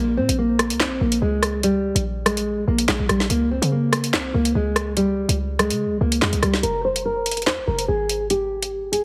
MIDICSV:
0, 0, Header, 1, 4, 480
1, 0, Start_track
1, 0, Key_signature, -4, "minor"
1, 0, Tempo, 416667
1, 1884, Time_signature, 4, 2, 24, 8
1, 10415, End_track
2, 0, Start_track
2, 0, Title_t, "Nylon-string guitar"
2, 0, Program_c, 0, 24
2, 0, Note_on_c, 0, 58, 105
2, 171, Note_off_c, 0, 58, 0
2, 200, Note_on_c, 0, 60, 86
2, 410, Note_off_c, 0, 60, 0
2, 443, Note_on_c, 0, 58, 80
2, 894, Note_off_c, 0, 58, 0
2, 923, Note_on_c, 0, 60, 88
2, 1133, Note_off_c, 0, 60, 0
2, 1158, Note_on_c, 0, 58, 80
2, 1370, Note_off_c, 0, 58, 0
2, 1406, Note_on_c, 0, 56, 94
2, 1856, Note_off_c, 0, 56, 0
2, 1884, Note_on_c, 0, 55, 106
2, 2335, Note_off_c, 0, 55, 0
2, 2598, Note_on_c, 0, 56, 81
2, 3052, Note_off_c, 0, 56, 0
2, 3087, Note_on_c, 0, 58, 76
2, 3294, Note_off_c, 0, 58, 0
2, 3322, Note_on_c, 0, 56, 79
2, 3532, Note_off_c, 0, 56, 0
2, 3561, Note_on_c, 0, 55, 82
2, 3771, Note_off_c, 0, 55, 0
2, 3797, Note_on_c, 0, 58, 107
2, 4009, Note_off_c, 0, 58, 0
2, 4047, Note_on_c, 0, 60, 84
2, 4255, Note_off_c, 0, 60, 0
2, 4284, Note_on_c, 0, 58, 79
2, 4735, Note_off_c, 0, 58, 0
2, 4758, Note_on_c, 0, 60, 92
2, 4970, Note_off_c, 0, 60, 0
2, 5000, Note_on_c, 0, 58, 87
2, 5211, Note_off_c, 0, 58, 0
2, 5245, Note_on_c, 0, 56, 91
2, 5695, Note_off_c, 0, 56, 0
2, 5723, Note_on_c, 0, 55, 108
2, 6174, Note_off_c, 0, 55, 0
2, 6440, Note_on_c, 0, 56, 98
2, 6893, Note_off_c, 0, 56, 0
2, 6926, Note_on_c, 0, 58, 72
2, 7134, Note_off_c, 0, 58, 0
2, 7165, Note_on_c, 0, 56, 78
2, 7374, Note_off_c, 0, 56, 0
2, 7405, Note_on_c, 0, 55, 84
2, 7613, Note_off_c, 0, 55, 0
2, 7638, Note_on_c, 0, 70, 98
2, 7850, Note_off_c, 0, 70, 0
2, 7887, Note_on_c, 0, 72, 87
2, 8095, Note_off_c, 0, 72, 0
2, 8126, Note_on_c, 0, 70, 76
2, 8576, Note_off_c, 0, 70, 0
2, 8597, Note_on_c, 0, 72, 83
2, 8809, Note_off_c, 0, 72, 0
2, 8840, Note_on_c, 0, 70, 77
2, 9051, Note_off_c, 0, 70, 0
2, 9080, Note_on_c, 0, 68, 98
2, 9533, Note_off_c, 0, 68, 0
2, 9566, Note_on_c, 0, 67, 103
2, 10016, Note_off_c, 0, 67, 0
2, 10277, Note_on_c, 0, 68, 80
2, 10415, Note_off_c, 0, 68, 0
2, 10415, End_track
3, 0, Start_track
3, 0, Title_t, "808-style bass"
3, 0, Program_c, 1, 38
3, 0, Note_on_c, 1, 34, 108
3, 203, Note_on_c, 1, 46, 100
3, 220, Note_off_c, 1, 34, 0
3, 324, Note_off_c, 1, 46, 0
3, 330, Note_on_c, 1, 34, 111
3, 810, Note_on_c, 1, 37, 96
3, 827, Note_off_c, 1, 34, 0
3, 986, Note_on_c, 1, 34, 101
3, 1004, Note_off_c, 1, 37, 0
3, 1154, Note_off_c, 1, 34, 0
3, 1163, Note_on_c, 1, 34, 104
3, 1394, Note_off_c, 1, 34, 0
3, 1403, Note_on_c, 1, 37, 109
3, 2216, Note_off_c, 1, 37, 0
3, 2250, Note_on_c, 1, 34, 103
3, 3050, Note_off_c, 1, 34, 0
3, 3083, Note_on_c, 1, 34, 103
3, 3313, Note_off_c, 1, 34, 0
3, 3323, Note_on_c, 1, 34, 108
3, 3443, Note_off_c, 1, 34, 0
3, 3450, Note_on_c, 1, 34, 106
3, 3556, Note_off_c, 1, 34, 0
3, 3563, Note_on_c, 1, 34, 107
3, 3793, Note_off_c, 1, 34, 0
3, 3802, Note_on_c, 1, 37, 113
3, 4155, Note_off_c, 1, 37, 0
3, 4170, Note_on_c, 1, 49, 107
3, 4763, Note_on_c, 1, 36, 101
3, 4780, Note_off_c, 1, 49, 0
3, 4991, Note_off_c, 1, 36, 0
3, 5003, Note_on_c, 1, 37, 107
3, 5234, Note_off_c, 1, 37, 0
3, 5243, Note_on_c, 1, 37, 108
3, 6057, Note_off_c, 1, 37, 0
3, 6091, Note_on_c, 1, 37, 111
3, 6571, Note_on_c, 1, 49, 98
3, 6588, Note_off_c, 1, 37, 0
3, 6747, Note_on_c, 1, 37, 99
3, 6764, Note_off_c, 1, 49, 0
3, 6914, Note_off_c, 1, 37, 0
3, 6923, Note_on_c, 1, 37, 103
3, 7153, Note_off_c, 1, 37, 0
3, 7163, Note_on_c, 1, 41, 107
3, 7285, Note_off_c, 1, 41, 0
3, 7290, Note_on_c, 1, 37, 104
3, 7396, Note_off_c, 1, 37, 0
3, 7403, Note_on_c, 1, 37, 105
3, 7633, Note_off_c, 1, 37, 0
3, 7644, Note_on_c, 1, 29, 108
3, 8603, Note_on_c, 1, 41, 97
3, 8620, Note_off_c, 1, 29, 0
3, 8731, Note_on_c, 1, 29, 102
3, 8748, Note_off_c, 1, 41, 0
3, 8838, Note_off_c, 1, 29, 0
3, 8843, Note_on_c, 1, 29, 104
3, 9073, Note_off_c, 1, 29, 0
3, 9083, Note_on_c, 1, 32, 108
3, 10415, Note_off_c, 1, 32, 0
3, 10415, End_track
4, 0, Start_track
4, 0, Title_t, "Drums"
4, 335, Note_on_c, 9, 42, 86
4, 450, Note_off_c, 9, 42, 0
4, 682, Note_on_c, 9, 37, 101
4, 683, Note_on_c, 9, 42, 81
4, 797, Note_off_c, 9, 37, 0
4, 799, Note_off_c, 9, 42, 0
4, 810, Note_on_c, 9, 42, 70
4, 922, Note_on_c, 9, 38, 114
4, 925, Note_off_c, 9, 42, 0
4, 930, Note_on_c, 9, 39, 87
4, 1037, Note_off_c, 9, 38, 0
4, 1045, Note_off_c, 9, 39, 0
4, 1289, Note_on_c, 9, 42, 78
4, 1404, Note_off_c, 9, 42, 0
4, 1642, Note_on_c, 9, 37, 103
4, 1645, Note_on_c, 9, 42, 80
4, 1757, Note_off_c, 9, 37, 0
4, 1760, Note_off_c, 9, 42, 0
4, 1882, Note_on_c, 9, 42, 80
4, 1997, Note_off_c, 9, 42, 0
4, 2256, Note_on_c, 9, 42, 85
4, 2371, Note_off_c, 9, 42, 0
4, 2603, Note_on_c, 9, 37, 101
4, 2604, Note_on_c, 9, 42, 81
4, 2718, Note_off_c, 9, 37, 0
4, 2720, Note_off_c, 9, 42, 0
4, 2732, Note_on_c, 9, 42, 68
4, 2847, Note_off_c, 9, 42, 0
4, 3208, Note_on_c, 9, 42, 87
4, 3318, Note_off_c, 9, 42, 0
4, 3318, Note_on_c, 9, 42, 76
4, 3322, Note_on_c, 9, 38, 111
4, 3330, Note_on_c, 9, 39, 91
4, 3433, Note_off_c, 9, 42, 0
4, 3437, Note_off_c, 9, 38, 0
4, 3445, Note_off_c, 9, 39, 0
4, 3563, Note_on_c, 9, 37, 101
4, 3565, Note_on_c, 9, 42, 80
4, 3678, Note_off_c, 9, 37, 0
4, 3680, Note_off_c, 9, 42, 0
4, 3690, Note_on_c, 9, 38, 69
4, 3802, Note_on_c, 9, 42, 79
4, 3805, Note_off_c, 9, 38, 0
4, 3917, Note_off_c, 9, 42, 0
4, 4176, Note_on_c, 9, 42, 84
4, 4291, Note_off_c, 9, 42, 0
4, 4523, Note_on_c, 9, 37, 104
4, 4524, Note_on_c, 9, 42, 81
4, 4638, Note_off_c, 9, 37, 0
4, 4639, Note_off_c, 9, 42, 0
4, 4651, Note_on_c, 9, 42, 71
4, 4763, Note_on_c, 9, 38, 111
4, 4767, Note_off_c, 9, 42, 0
4, 4771, Note_on_c, 9, 39, 89
4, 4878, Note_off_c, 9, 38, 0
4, 4886, Note_off_c, 9, 39, 0
4, 5129, Note_on_c, 9, 42, 81
4, 5244, Note_off_c, 9, 42, 0
4, 5483, Note_on_c, 9, 37, 106
4, 5485, Note_on_c, 9, 42, 78
4, 5598, Note_off_c, 9, 37, 0
4, 5600, Note_off_c, 9, 42, 0
4, 5722, Note_on_c, 9, 42, 81
4, 5837, Note_off_c, 9, 42, 0
4, 6096, Note_on_c, 9, 42, 86
4, 6211, Note_off_c, 9, 42, 0
4, 6443, Note_on_c, 9, 37, 100
4, 6444, Note_on_c, 9, 42, 80
4, 6558, Note_off_c, 9, 37, 0
4, 6559, Note_off_c, 9, 42, 0
4, 6572, Note_on_c, 9, 42, 71
4, 6687, Note_off_c, 9, 42, 0
4, 7049, Note_on_c, 9, 42, 84
4, 7162, Note_on_c, 9, 38, 113
4, 7163, Note_off_c, 9, 42, 0
4, 7163, Note_on_c, 9, 42, 46
4, 7170, Note_on_c, 9, 39, 90
4, 7277, Note_off_c, 9, 38, 0
4, 7278, Note_off_c, 9, 42, 0
4, 7285, Note_off_c, 9, 39, 0
4, 7290, Note_on_c, 9, 42, 76
4, 7402, Note_on_c, 9, 37, 103
4, 7405, Note_off_c, 9, 42, 0
4, 7405, Note_on_c, 9, 42, 81
4, 7517, Note_off_c, 9, 37, 0
4, 7520, Note_off_c, 9, 42, 0
4, 7529, Note_on_c, 9, 38, 72
4, 7642, Note_on_c, 9, 42, 81
4, 7645, Note_off_c, 9, 38, 0
4, 7757, Note_off_c, 9, 42, 0
4, 8016, Note_on_c, 9, 42, 84
4, 8131, Note_off_c, 9, 42, 0
4, 8363, Note_on_c, 9, 42, 72
4, 8426, Note_off_c, 9, 42, 0
4, 8426, Note_on_c, 9, 42, 61
4, 8490, Note_off_c, 9, 42, 0
4, 8490, Note_on_c, 9, 42, 52
4, 8547, Note_off_c, 9, 42, 0
4, 8547, Note_on_c, 9, 42, 44
4, 8603, Note_on_c, 9, 38, 113
4, 8611, Note_on_c, 9, 39, 92
4, 8662, Note_off_c, 9, 42, 0
4, 8718, Note_off_c, 9, 38, 0
4, 8726, Note_off_c, 9, 39, 0
4, 8969, Note_on_c, 9, 42, 83
4, 9084, Note_off_c, 9, 42, 0
4, 9325, Note_on_c, 9, 42, 78
4, 9440, Note_off_c, 9, 42, 0
4, 9563, Note_on_c, 9, 42, 79
4, 9678, Note_off_c, 9, 42, 0
4, 9936, Note_on_c, 9, 42, 83
4, 10051, Note_off_c, 9, 42, 0
4, 10285, Note_on_c, 9, 42, 70
4, 10400, Note_off_c, 9, 42, 0
4, 10415, End_track
0, 0, End_of_file